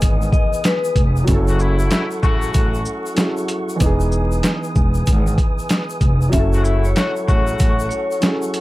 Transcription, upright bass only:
0.03 G#1
0.96 F1
1.28 F#1
2.23 A1
2.55 A1
3.81 E1
4.76 E1
5.08 G#1
6.01 F1
6.33 F#1
7.29 A1
7.60 A1

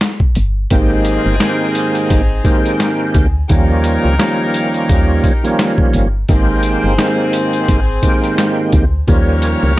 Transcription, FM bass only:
0.36 G1
0.71 G#1
1.26 G1
2.11 G#1
3.15 D2
3.50 D#2
4.05 C#2
4.90 D#2
5.94 G1
6.29 G#1
6.84 G1
7.69 G#1
8.73 D2
9.08 D#2
9.63 C#2

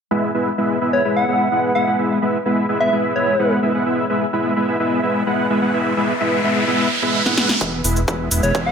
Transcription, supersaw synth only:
0.11 G#3 B3 E4 B4 E5
0.34 G#3 B3 E4 B4 E5
0.58 G#3 B3 E4 B4 E5
0.81 G#3 B3 E4 B4 E5
0.93 G#3 B3 E4 B4 E5
1.05 G#3 B3 E4 B4 E5
1.28 G#3 B3 E4 B4 E5
1.52 G#3 B3 E4 B4 F#5
1.75 G#3 B3 E4 B4 E5
1.87 G#3 B3 E4 B4 F#5
1.99 G#3 B3 E4 B4 E5
2.22 G#3 B3 E4 B4 E5
2.45 G#3 B3 E4 B4 E5
2.69 G#3 B3 E4 B4 E5
2.81 G#3 B3 E4 B4 E5
2.92 G#3 B3 E4 B4 E5
3.16 G#3 B3 E4 B4 E5
3.39 G#3 B3 E4 B4 F#5
3.63 G#3 B3 E4 B4 E5
3.74 G#3 B3 E4 B4 F#5
3.86 G#3 B3 E4 B4 E5
4.10 G#3 B3 E4 B4 E5
4.33 G#3 B3 E4 B4 E5
4.56 G#3 B3 E4 B4 E5
4.68 G#3 B3 E4 B4 E5
4.80 G#3 B3 E4 B4 E5
5.03 G#3 B3 E4 B4 E5
5.27 G#3 B3 E4 B4 F#5
5.50 G#3 B3 E4 B4 E5
5.62 G#3 B3 E4 B4 F#5
5.74 G#3 B3 E4 B4 E5
5.97 G#3 B3 E4 B4 E5
6.20 G#3 B3 E4 B4 E5
6.44 G#3 B3 E4 B4 E5
6.56 G#3 B3 E4 B4 E5
6.67 G#3 B3 E4 B4 E5
7.02 G#3 B3 E4 B4 E5
7.26 G#3 B3 E4 B4 F#5
7.38 G#3 B3 E4 B4 F#5
7.61 G#3 B3 E4 B4 E5
7.84 G#3 B3 E4 B4 E5
8.08 G#3 B3 E4 B4 E5
8.31 G#3 B3 E4 B4 E5
8.43 G#3 B3 E4 B4 E5
8.55 G#3 B3 E4 B4 E5

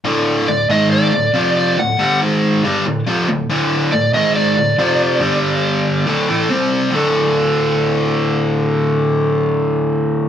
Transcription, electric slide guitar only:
0.48 D5
0.71 D#5
0.92 D5
1.57 D5
1.79 F#5
3.93 D5
4.14 D#5
4.35 D5

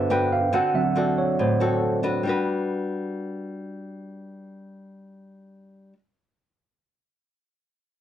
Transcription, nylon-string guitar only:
Already playing: D3
0.10 D4 F#4 B4
0.53 D3 C4 F#4 A4
0.96 C4 F#4 A4
1.39 A2
1.60 C4 F#4 A4
2.03 D4 F#4 B4
2.23 G3 D4 F#4
2.29 B4

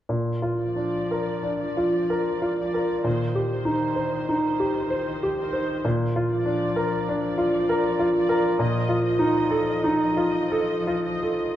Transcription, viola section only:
0.61 F3 D5
1.62 F3 D5
2.59 F3 D5
3.05 D#3 C5
3.52 D#3 C5
4.46 D#3 C5
5.38 D#3 C5
6.30 F3 D5
7.22 F3 D5
8.15 F3 D5
8.60 F3 D#5
9.06 F3 D#5
10.01 F3 D#5
11.04 F3 D#5

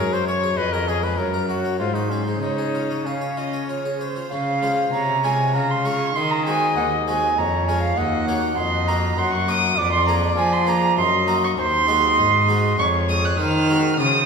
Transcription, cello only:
Already playing: F#2
0.58 F2
1.18 F#2
1.80 G#2
2.43 C#3
4.32 C#3
4.93 C3
5.54 C#3
6.15 D#3
6.77 D#2
7.38 F2
7.98 D#2
8.58 F2
9.18 F#2
9.78 F2
10.38 F3
10.98 F#2
11.58 D#2
12.18 G#2
12.79 F2
13.39 D#3
14.00 C#3

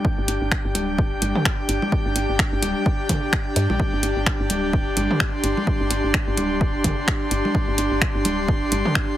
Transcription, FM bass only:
0.18 G1
0.28 G1
0.42 G1
0.65 G1
0.75 D1
1.12 F1
1.22 G1
1.69 G1
2.06 G1
2.16 G1
2.29 G1
2.53 G1
2.62 D1
3.56 G2
3.70 A#1
3.93 G1
4.03 G1
4.17 G1
4.40 G1
4.50 D1
4.87 F1
4.97 G1
5.44 G1
5.81 G1
5.91 G1
6.04 G1
6.28 G1
6.38 D1
6.75 F1
6.84 G1
7.31 G1
7.68 G1
7.78 G1
7.92 G1
8.15 G1
8.25 D1
8.62 F1
8.72 G1

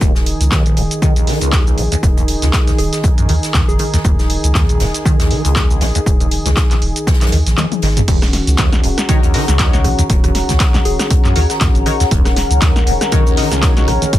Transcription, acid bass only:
0.01 D#2
0.52 D#2
0.66 D#1
0.77 D#3
1.02 D#3
1.16 D#2
1.27 D#3
1.41 C#2
1.53 D#2
1.67 C#2
1.78 D#3
1.92 D#2
2.03 D#2
2.17 D#2
2.42 C#2
2.68 C#2
3.04 D#2
3.18 F#2
3.29 D#3
3.54 D#2
3.79 D#3
3.94 D#2
4.05 D#2
4.55 D#2
4.69 D#1
4.80 D#3
5.05 D#3
5.20 D#2
5.31 D#3
5.45 C#2
5.56 D#2
5.70 C#2
5.81 D#3
5.95 D#2
6.06 D#2
6.20 D#2
6.46 C#2
6.71 C#2
7.07 D#2
7.21 F#2
7.32 D#3
7.58 D#2
7.83 D#3
7.97 D#2
8.08 D#2
8.58 D#2
8.73 D#1
8.84 D#3
9.09 D#3
9.23 D#2
9.34 D#3
9.48 C#2
9.59 D#2
9.73 C#2
9.84 D#3
9.99 D#2
10.10 D#2
10.24 D#2
10.49 C#2
10.74 C#2
11.10 D#2
11.25 F#2
11.36 D#3
11.61 D#2
11.86 D#3
12.00 D#2
12.11 D#2
12.62 D#2
12.76 D#1
12.87 D#3
13.12 D#3
13.26 D#2
13.37 D#3
13.52 C#2
13.63 D#2
13.77 C#2
13.88 D#3
14.02 D#2
14.13 D#2

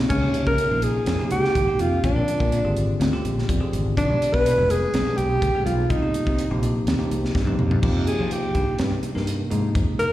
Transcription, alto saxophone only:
0.09 C#4
0.47 A#4
0.83 G#4
1.31 G4
1.81 F4
2.04 D4
3.97 D4
4.34 B4
4.70 G#4
5.18 G4
5.65 F4
5.90 D#4
8.07 G#4
8.33 G4
9.99 A#4

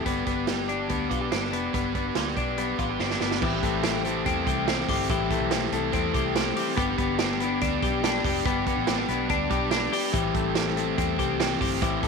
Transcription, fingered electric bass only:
0.06 G1
0.27 G1
0.90 D2
1.11 B1
1.32 G1
1.53 F1
1.74 G1
2.16 D2
2.37 B1
2.79 A1
2.99 G1
3.21 G1
3.42 A1
3.63 A1
4.26 E2
4.47 C2
4.88 G1
5.10 A1
5.41 B1
5.72 C2
5.94 E2
6.15 C2
6.77 G1
6.99 G1
7.61 D2
7.83 B1
8.25 F1
8.46 G1
8.77 A1
9.09 B1
9.30 D2
9.51 B1
10.14 A1
10.35 A1
10.98 E2
11.19 C2
11.61 G1
11.82 A1

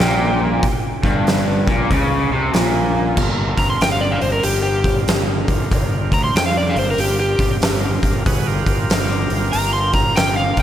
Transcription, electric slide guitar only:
Already playing: G5
3.59 A#5
3.70 C6
3.82 G5
3.92 F5
4.01 D5
4.12 F5
4.22 C5
4.33 A#4
4.44 G4
4.63 G4
6.14 A#5
6.24 C6
6.36 G5
6.46 F5
6.57 D5
6.70 F5
6.79 C5
6.91 A#4
7.00 G4
7.20 G4
9.52 A#5
9.73 C6
9.94 A#5
10.16 G5
10.37 F5

